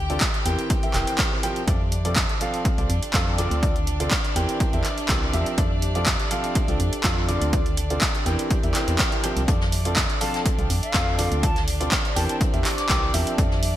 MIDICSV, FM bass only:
0, 0, Header, 1, 2, 480
1, 0, Start_track
1, 0, Key_signature, -1, "major"
1, 0, Tempo, 487805
1, 1650, Time_signature, 4, 2, 24, 8
1, 13542, End_track
2, 0, Start_track
2, 0, Title_t, "FM bass"
2, 0, Program_c, 0, 39
2, 0, Note_on_c, 0, 38, 92
2, 182, Note_off_c, 0, 38, 0
2, 450, Note_on_c, 0, 40, 82
2, 557, Note_off_c, 0, 40, 0
2, 930, Note_on_c, 0, 28, 86
2, 1037, Note_off_c, 0, 28, 0
2, 1648, Note_on_c, 0, 41, 102
2, 2225, Note_off_c, 0, 41, 0
2, 2737, Note_on_c, 0, 36, 89
2, 2832, Note_off_c, 0, 36, 0
2, 2849, Note_on_c, 0, 41, 98
2, 2957, Note_off_c, 0, 41, 0
2, 3089, Note_on_c, 0, 41, 95
2, 3425, Note_off_c, 0, 41, 0
2, 3456, Note_on_c, 0, 38, 95
2, 4021, Note_off_c, 0, 38, 0
2, 4289, Note_on_c, 0, 40, 78
2, 4397, Note_off_c, 0, 40, 0
2, 4656, Note_on_c, 0, 40, 88
2, 4752, Note_off_c, 0, 40, 0
2, 5009, Note_on_c, 0, 36, 96
2, 5214, Note_off_c, 0, 36, 0
2, 5249, Note_on_c, 0, 40, 92
2, 5357, Note_off_c, 0, 40, 0
2, 5489, Note_on_c, 0, 41, 100
2, 6065, Note_off_c, 0, 41, 0
2, 6576, Note_on_c, 0, 36, 91
2, 6672, Note_off_c, 0, 36, 0
2, 6689, Note_on_c, 0, 41, 100
2, 6797, Note_off_c, 0, 41, 0
2, 6930, Note_on_c, 0, 41, 99
2, 7266, Note_off_c, 0, 41, 0
2, 7297, Note_on_c, 0, 38, 96
2, 7862, Note_off_c, 0, 38, 0
2, 8129, Note_on_c, 0, 40, 82
2, 8237, Note_off_c, 0, 40, 0
2, 8498, Note_on_c, 0, 40, 89
2, 8593, Note_off_c, 0, 40, 0
2, 8736, Note_on_c, 0, 40, 89
2, 8832, Note_off_c, 0, 40, 0
2, 9217, Note_on_c, 0, 36, 98
2, 9312, Note_off_c, 0, 36, 0
2, 9329, Note_on_c, 0, 41, 104
2, 9905, Note_off_c, 0, 41, 0
2, 10415, Note_on_c, 0, 36, 90
2, 10512, Note_off_c, 0, 36, 0
2, 10530, Note_on_c, 0, 41, 97
2, 10637, Note_off_c, 0, 41, 0
2, 10768, Note_on_c, 0, 41, 99
2, 11105, Note_off_c, 0, 41, 0
2, 11136, Note_on_c, 0, 38, 96
2, 11701, Note_off_c, 0, 38, 0
2, 11969, Note_on_c, 0, 40, 81
2, 12077, Note_off_c, 0, 40, 0
2, 12337, Note_on_c, 0, 40, 86
2, 12433, Note_off_c, 0, 40, 0
2, 12689, Note_on_c, 0, 36, 95
2, 12894, Note_off_c, 0, 36, 0
2, 12930, Note_on_c, 0, 40, 96
2, 13038, Note_off_c, 0, 40, 0
2, 13169, Note_on_c, 0, 41, 101
2, 13542, Note_off_c, 0, 41, 0
2, 13542, End_track
0, 0, End_of_file